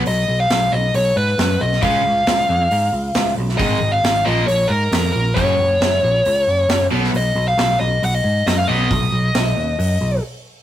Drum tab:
HH |o---o---o---o---|o---o---o---o---|o---o---o---o---|o---o---o---o---|
SD |----o-------o--o|----o-------o--o|----o-------o---|----o-------o--o|
BD |----------------|o---------------|o---------------|o---------------|

HH |o---o---o---o---|o---o---o-------|
SD |----o-------o---|----o-----------|
BD |----------------|o---------------|